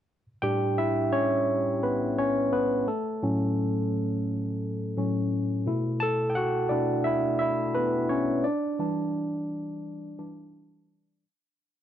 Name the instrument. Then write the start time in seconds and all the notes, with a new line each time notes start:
tine electric piano
0.42 A2 G3 D4 G4 G5
0.78 E4 E5
1.13 C#4 C#5
1.83 B3 B4
2.18 C#4 C#5
2.52 B3 B4
2.87 A3 A4
3.22 A2 F#3 C#4
4.97 A2 F#3 C#4
5.66 B2 A3 E4
6.00 A4 A5
6.30 G5
6.35 F#4 F#5
6.69 B2 A3 D4 E4 D5
7.04 E4 E5
7.39 E4 E5
7.75 B3 B4
8.09 C#4 C#5
8.44 D4 D5
8.79 E3 G3 D4
10.18 E3 G3 D4